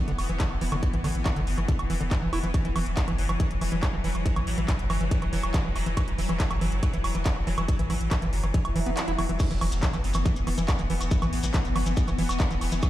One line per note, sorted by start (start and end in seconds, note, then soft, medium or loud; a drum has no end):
0.00 9.39 E3 medium
0.00 2.56 B3 medium
0.08 0.15 E1 medium
0.08 0.12 D3 loud
0.08 closed hi-hat soft
0.18 0.26 E1 loud
0.18 open hi-hat loud
0.18 high woodblock medium
0.29 0.37 E1 loud
0.29 0.32 E3 medium
0.29 closed hi-hat soft
0.40 0.44 D3 loud
0.40 kick loud
0.40 clap loud
0.40 closed hi-hat medium
0.51 0.58 E1 medium
0.51 high woodblock soft
0.61 0.69 E1 loud
0.61 0.64 E3 medium
0.61 open hi-hat medium
0.72 0.79 E1 medium
0.72 0.76 D3 loud
0.72 closed hi-hat soft
0.72 high woodblock medium
0.83 kick loud
0.83 closed hi-hat medium
0.93 1.01 A1 medium
0.93 0.96 E3 medium
0.93 closed hi-hat soft
1.04 1.12 A1 loud
1.04 1.08 D3 loud
1.04 open hi-hat loud
1.04 high woodblock soft
1.15 1.22 A1 medium
1.15 closed hi-hat soft
1.26 1.28 E3 medium
1.26 kick loud
1.26 clap loud
1.26 closed hi-hat medium
1.26 high woodblock medium
1.36 1.44 F#1 medium
1.36 1.40 D3 loud
1.36 closed hi-hat soft
1.47 1.54 F#1 loud
1.47 open hi-hat loud
1.58 1.65 F#1 medium
1.58 1.60 E3 medium
1.58 closed hi-hat soft
1.58 high woodblock soft
1.68 1.73 D3 loud
1.68 kick loud
1.68 closed hi-hat medium
1.79 1.87 E1 medium
1.79 closed hi-hat soft
1.79 high woodblock medium
1.90 1.97 E1 loud
1.90 1.94 E3 medium
1.90 open hi-hat loud
2.01 2.08 E1 medium
2.01 2.03 D3 medium
2.01 closed hi-hat soft
2.11 kick loud
2.11 clap loud
2.11 closed hi-hat medium
2.11 high woodblock soft
2.22 2.29 E1 medium
2.22 2.28 E3 medium
2.33 2.40 E1 loud
2.33 2.39 E4 loud
2.33 open hi-hat medium
2.33 high woodblock medium
2.43 2.51 E1 medium
2.43 2.46 E3 loud
2.43 closed hi-hat soft
2.54 9.42 F#3 medium
2.54 kick loud
2.54 closed hi-hat medium
2.54 high woodblock soft
2.65 2.72 E1 medium
2.65 2.67 E3 medium
2.65 closed hi-hat soft
2.76 2.83 E1 loud
2.76 2.80 E3 medium
2.76 open hi-hat loud
2.76 high woodblock medium
2.86 2.94 E1 medium
2.86 closed hi-hat soft
2.97 3.00 E3 medium
2.97 kick loud
2.97 clap loud
2.97 closed hi-hat medium
3.08 3.15 F#1 medium
3.08 3.12 E3 medium
3.08 closed hi-hat soft
3.08 high woodblock soft
3.18 3.26 F#1 loud
3.18 open hi-hat loud
3.29 3.37 F#1 medium
3.29 3.32 E3 medium
3.29 closed hi-hat soft
3.29 high woodblock medium
3.40 3.44 E3 medium
3.40 kick loud
3.40 closed hi-hat medium
3.51 3.58 E1 medium
3.51 closed hi-hat soft
3.61 3.69 E1 loud
3.61 3.64 E3 medium
3.61 open hi-hat loud
3.61 high woodblock soft
3.72 3.79 E1 medium
3.72 3.76 E3 medium
3.72 closed hi-hat soft
3.83 kick loud
3.83 clap loud
3.83 closed hi-hat medium
3.83 high woodblock medium
3.93 4.01 E1 medium
3.93 3.96 E3 medium
4.04 4.12 E1 loud
4.04 4.08 E3 medium
4.04 open hi-hat medium
4.15 4.22 E1 medium
4.15 closed hi-hat soft
4.15 high woodblock soft
4.26 4.28 E3 medium
4.26 kick loud
4.26 closed hi-hat medium
4.36 4.44 A1 medium
4.36 4.40 E3 medium
4.36 closed hi-hat soft
4.36 high woodblock medium
4.47 4.54 A1 loud
4.47 open hi-hat loud
4.58 4.65 A1 medium
4.58 4.60 E3 medium
4.58 closed hi-hat soft
4.68 4.73 E3 medium
4.68 kick loud
4.68 clap loud
4.68 closed hi-hat medium
4.68 high woodblock soft
4.79 4.87 F#1 medium
4.79 closed hi-hat soft
4.90 4.97 F#1 loud
4.90 4.92 E3 medium
4.90 open hi-hat medium
4.90 high woodblock medium
5.01 5.08 F#1 medium
5.01 5.05 E3 medium
5.01 closed hi-hat soft
5.11 kick loud
5.11 closed hi-hat loud
5.22 5.29 E1 medium
5.22 5.25 E3 medium
5.22 closed hi-hat soft
5.22 high woodblock soft
5.33 5.40 E1 loud
5.33 5.37 E3 medium
5.33 open hi-hat loud
5.43 5.51 E1 medium
5.43 closed hi-hat soft
5.43 high woodblock medium
5.54 5.57 E3 medium
5.54 kick loud
5.54 clap loud
5.54 closed hi-hat medium
5.65 5.72 E1 medium
5.65 5.69 E3 medium
5.76 5.83 E1 loud
5.76 open hi-hat medium
5.76 high woodblock soft
5.86 5.94 E1 medium
5.86 5.89 E3 medium
5.86 closed hi-hat soft
5.97 6.01 E3 medium
5.97 kick loud
5.97 closed hi-hat loud
5.97 high woodblock medium
6.08 6.15 E1 medium
6.08 closed hi-hat soft
6.18 6.26 E1 loud
6.18 6.21 E3 medium
6.18 open hi-hat loud
6.29 6.37 E1 medium
6.29 6.33 E3 medium
6.29 closed hi-hat soft
6.29 high woodblock soft
6.40 kick loud
6.40 clap loud
6.40 closed hi-hat loud
6.51 6.58 F#1 medium
6.51 6.53 E3 medium
6.51 closed hi-hat soft
6.51 high woodblock medium
6.61 6.69 F#1 loud
6.61 6.65 E3 medium
6.61 open hi-hat medium
6.72 6.79 F#1 medium
6.72 closed hi-hat soft
6.83 6.85 E3 medium
6.83 kick loud
6.83 closed hi-hat loud
6.83 high woodblock soft
6.93 7.01 E1 medium
6.93 6.98 E3 medium
6.93 closed hi-hat soft
7.04 7.12 E1 loud
7.04 open hi-hat loud
7.04 high woodblock medium
7.15 7.22 E1 medium
7.15 7.17 E3 medium
7.15 closed hi-hat soft
7.26 7.30 E3 medium
7.26 kick loud
7.26 clap loud
7.26 closed hi-hat loud
7.36 7.44 E1 medium
7.36 high woodblock soft
7.47 7.54 E1 loud
7.47 7.50 E3 medium
7.47 open hi-hat medium
7.58 7.65 E1 medium
7.58 7.62 E3 medium
7.58 closed hi-hat soft
7.58 high woodblock medium
7.68 kick loud
7.68 closed hi-hat loud
7.79 7.87 A1 medium
7.79 7.82 E3 medium
7.79 closed hi-hat soft
7.90 7.97 A1 loud
7.90 7.94 E3 medium
7.90 open hi-hat loud
7.90 high woodblock soft
8.01 8.08 A1 medium
8.01 closed hi-hat soft
8.11 8.14 E3 medium
8.11 kick loud
8.11 clap loud
8.11 closed hi-hat loud
8.11 high woodblock medium
8.22 8.29 F#1 medium
8.22 8.26 E3 medium
8.22 closed hi-hat soft
8.33 8.40 F#1 loud
8.33 open hi-hat medium
8.43 8.51 F#1 medium
8.43 8.46 E3 medium
8.43 closed hi-hat soft
8.43 high woodblock soft
8.54 8.58 E3 medium
8.54 kick loud
8.54 closed hi-hat medium
8.54 swell medium
8.65 8.72 E1 medium
8.65 closed hi-hat soft
8.65 high woodblock medium
8.76 8.83 E1 loud
8.76 8.80 E3 loud
8.76 open hi-hat loud
8.86 8.94 E1 medium
8.86 8.90 B3 medium
8.86 closed hi-hat soft
8.97 clap loud
8.97 closed hi-hat loud
8.97 high woodblock soft
9.08 9.15 E1 medium
9.08 9.12 E4 medium
9.08 closed hi-hat soft
9.19 9.26 E1 loud
9.19 9.21 E3 medium
9.19 open hi-hat medium
9.19 high woodblock medium
9.29 9.37 E1 medium
9.29 9.32 E3 medium
9.29 closed hi-hat soft
9.39 12.90 E3 medium
9.39 12.90 B3 medium
9.39 kick loud
9.39 closed hi-hat medium
9.39 crash loud
9.39 impact medium
9.39 high woodblock soft
9.39 shekere medium
9.50 9.58 E1 medium
9.50 9.53 E3 medium
9.50 closed hi-hat soft
9.50 shekere soft
9.61 9.69 E1 loud
9.61 9.65 E3 medium
9.61 open hi-hat loud
9.61 high woodblock medium
9.72 9.79 E1 medium
9.72 closed hi-hat medium
9.72 shekere medium
9.82 9.85 E3 medium
9.82 kick loud
9.82 clap loud
9.82 closed hi-hat medium
9.82 shekere medium
9.93 10.01 F#1 medium
9.93 9.98 E3 medium
9.93 closed hi-hat soft
9.93 high woodblock soft
9.93 shekere soft
10.04 10.12 F#1 loud
10.04 open hi-hat medium
10.14 10.22 F#1 medium
10.14 10.17 E3 medium
10.14 closed hi-hat medium
10.14 high woodblock medium
10.14 shekere medium
10.26 10.30 E3 medium
10.26 kick loud
10.26 closed hi-hat medium
10.26 shekere medium
10.36 10.44 E1 medium
10.36 closed hi-hat soft
10.36 shekere soft
10.47 10.54 E1 loud
10.47 10.50 E3 medium
10.47 open hi-hat loud
10.47 high woodblock soft
10.58 10.65 E1 medium
10.58 10.62 E3 medium
10.58 closed hi-hat medium
10.58 shekere medium
10.68 kick loud
10.68 clap loud
10.68 closed hi-hat medium
10.68 high woodblock medium
10.68 shekere medium
10.78 10.87 E1 medium
10.78 10.82 E3 medium
10.78 closed hi-hat soft
10.78 shekere soft
10.90 10.97 E1 loud
10.90 10.94 E3 medium
10.90 open hi-hat loud
11.01 11.08 E1 medium
11.01 closed hi-hat medium
11.01 high woodblock soft
11.01 shekere medium
11.11 11.14 E3 medium
11.11 kick loud
11.11 closed hi-hat medium
11.11 shekere medium
11.22 11.29 A1 medium
11.22 11.26 E3 medium
11.22 closed hi-hat soft
11.22 high woodblock medium
11.22 shekere soft
11.33 11.40 A1 loud
11.33 open hi-hat loud
11.43 11.51 A1 medium
11.43 11.46 E3 medium
11.43 closed hi-hat medium
11.43 shekere medium
11.54 11.58 E3 medium
11.54 kick loud
11.54 clap loud
11.54 closed hi-hat medium
11.54 high woodblock soft
11.54 shekere medium
11.65 11.72 F#1 medium
11.65 closed hi-hat soft
11.65 shekere soft
11.76 11.83 F#1 loud
11.76 11.78 E3 medium
11.76 open hi-hat loud
11.76 high woodblock medium
11.86 11.94 F#1 medium
11.86 11.90 E3 medium
11.86 closed hi-hat medium
11.86 shekere medium
11.97 kick loud
11.97 closed hi-hat medium
11.97 shekere medium
12.07 12.15 E1 medium
12.07 12.10 E3 medium
12.07 closed hi-hat soft
12.07 high woodblock soft
12.07 shekere soft
12.18 12.26 E1 loud
12.18 12.23 E3 medium
12.18 open hi-hat loud
12.29 12.37 E1 loud
12.29 closed hi-hat medium
12.29 high woodblock medium
12.29 shekere medium
12.40 12.42 E3 medium
12.40 kick loud
12.40 clap loud
12.40 closed hi-hat medium
12.40 shekere medium
12.51 12.58 E1 medium
12.51 12.55 E3 medium
12.51 closed hi-hat soft
12.51 shekere soft
12.61 12.69 E1 loud
12.61 open hi-hat loud
12.61 high woodblock soft
12.72 12.79 E1 medium
12.72 12.75 E3 medium
12.72 closed hi-hat medium
12.72 shekere medium
12.82 12.87 E3 medium
12.82 kick loud
12.82 closed hi-hat medium
12.82 high woodblock medium
12.82 shekere medium